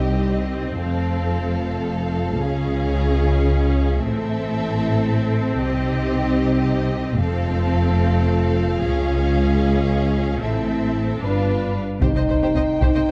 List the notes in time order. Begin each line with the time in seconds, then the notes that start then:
Already playing: C2 G3 C4 D#4 G4 D#5
0.80 F1 F2 A3 F4 A4 F5
2.41 C#2 C#3 G#3 C#4 G#4
4.01 A1 A2 C4 E4 A4 E5
5.61 C2 C3 D#4 G4 D#5
7.20 F1 F2 A3 C4 F4 A4 F5
8.82 C#2 G#3 C#4 G#4
10.42 A1 A2 C4 E4 A4 E5
11.21 G1 G2 B3 D4 F4 B4 F5
12.01 C2 C3 D#4 G4 C5 G5, taiko, impact
12.15 C3 C5 D#5
12.28 C2 C3 C5
12.42 C3 G4 C5
12.55 C2 C3 C5 D#5
12.81 C2 C3 D#4 G4 C5, taiko
12.95 C3 C5 D#5
13.08 C5